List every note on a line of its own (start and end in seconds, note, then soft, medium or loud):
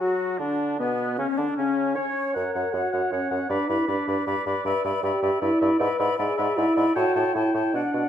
0.00 0.37 F#3 soft
0.00 0.40 F#4 soft
0.00 0.41 F#4 soft
0.00 0.38 F#4 soft
0.00 0.43 F#4 soft
0.38 0.78 D3 soft
0.38 0.78 D4 soft
0.38 0.81 D4 soft
0.38 0.78 D4 soft
0.38 0.79 D4 medium
0.79 1.18 B2 soft
0.79 1.18 B3 soft
0.79 1.20 B3 soft
0.79 1.18 B3 soft
0.79 1.19 B4 soft
1.18 1.27 C#3 soft
1.18 1.39 C#4 soft
1.18 1.27 C#4 soft
1.18 1.40 C#4 medium
1.36 1.47 D3 soft
1.36 1.55 D4 soft
1.36 1.57 D4 soft
1.36 1.50 D4 soft
1.51 1.60 D4 soft
1.56 1.98 C#3 soft
1.56 1.94 C#4 soft
1.56 1.97 C#4 soft
1.56 1.95 C#4 soft
1.56 1.98 C#4 medium
1.94 2.35 C#4 medium
1.94 2.33 C#5 medium
1.94 2.34 C#5 medium
1.94 2.34 C#5 soft
1.94 2.37 C#5 medium
2.34 2.44 F#2 soft
2.34 2.76 A#4 medium
2.34 2.54 C#5 soft
2.34 2.53 F#5 soft
2.54 2.64 F#2 soft
2.54 2.74 C#5 soft
2.54 2.71 F#5 soft
2.54 2.73 F#5 soft
2.72 2.82 F#2 soft
2.72 3.14 F#4 medium
2.72 2.93 C#5 soft
2.72 2.92 F#5 soft
2.72 2.91 F#5 soft
2.92 3.02 F#2 soft
2.92 3.12 C#5 soft
2.92 3.11 F#5 soft
3.11 3.20 F#2 soft
3.11 3.49 C#4 medium
3.11 3.31 C#5 soft
3.11 3.29 F#5 soft
3.11 3.30 F#5 soft
3.30 3.39 F#2 soft
3.30 3.50 C#5 soft
3.30 3.49 F#5 soft
3.49 3.58 G2 soft
3.49 3.71 D4 medium
3.49 3.69 B4 soft
3.49 3.69 D5 soft
3.49 3.68 B5 soft
3.68 3.78 G2 soft
3.68 3.88 E4 medium
3.68 3.88 B4 soft
3.68 3.87 D5 soft
3.68 3.88 B5 soft
3.88 3.97 G2 soft
3.88 4.26 D4 soft
3.88 4.08 B4 soft
3.88 4.07 D5 soft
3.88 4.06 B5 soft
4.07 4.16 G2 soft
4.07 4.27 B4 soft
4.07 4.26 D5 soft
4.07 4.25 B5 soft
4.26 4.36 G2 medium
4.26 4.46 B4 soft
4.26 4.46 D5 soft
4.26 4.45 B5 soft
4.45 4.55 G2 medium
4.45 4.65 B4 soft
4.45 4.65 D5 soft
4.45 4.64 B5 soft
4.64 4.74 G2 medium
4.64 5.01 B4 medium
4.64 4.84 D5 soft
4.64 4.84 E5 soft
4.64 4.84 B5 soft
4.84 4.93 G2 medium
4.84 5.04 D5 soft
4.84 5.03 E5 soft
4.84 5.03 B5 soft
5.03 5.12 G2 medium
5.03 5.41 G4 medium
5.03 5.22 D5 soft
5.03 5.22 E5 soft
5.03 5.22 B5 soft
5.22 5.31 G2 medium
5.22 5.41 D5 soft
5.22 5.41 E5 soft
5.22 5.41 B5 soft
5.41 5.50 G2 medium
5.41 5.79 E4 medium
5.41 5.61 D5 soft
5.41 5.60 E5 soft
5.41 5.61 B5 soft
5.61 5.70 G2 medium
5.61 5.79 D5 soft
5.61 5.79 E5 soft
5.61 5.79 B5 soft
5.79 5.89 G#2 medium
5.79 6.18 B4 medium
5.79 5.99 D5 soft
5.79 5.99 E5 soft
5.79 5.98 B5 medium
5.99 6.08 G#2 medium
5.99 6.18 D5 soft
5.99 6.18 E5 soft
5.99 6.17 B5 medium
6.18 6.28 G#2 medium
6.18 6.59 G#4 medium
6.18 6.37 D5 medium
6.18 6.37 E5 soft
6.18 6.36 B5 soft
6.37 6.47 G#2 medium
6.37 6.56 D5 soft
6.37 6.57 E5 medium
6.37 6.55 B5 soft
6.56 6.66 G#2 medium
6.56 6.95 E4 medium
6.56 6.75 D5 medium
6.56 6.77 E5 medium
6.56 6.75 B5 soft
6.76 6.86 G#2 medium
6.76 6.95 D5 soft
6.76 6.95 E5 soft
6.76 6.95 B5 soft
6.95 7.05 A2 medium
6.95 7.36 F#4 medium
6.95 7.14 C#5 medium
6.95 7.15 G5 soft
6.95 7.14 A5 medium
7.15 7.24 A2 medium
7.15 7.34 C#5 soft
7.15 7.35 G5 soft
7.15 7.34 A5 soft
7.34 7.44 A2 soft
7.34 7.76 E4 medium
7.34 7.53 C#5 soft
7.34 7.55 G5 soft
7.34 7.53 A5 soft
7.54 7.63 A2 soft
7.54 7.73 C#5 soft
7.54 7.74 G5 soft
7.54 7.73 A5 soft
7.74 7.83 B2 soft
7.74 8.09 D4 medium
7.74 7.93 D5 soft
7.74 7.93 F#5 soft
7.74 7.94 F#5 soft
7.93 8.03 B2 soft
7.93 8.09 D5 soft
7.93 8.09 F#5 soft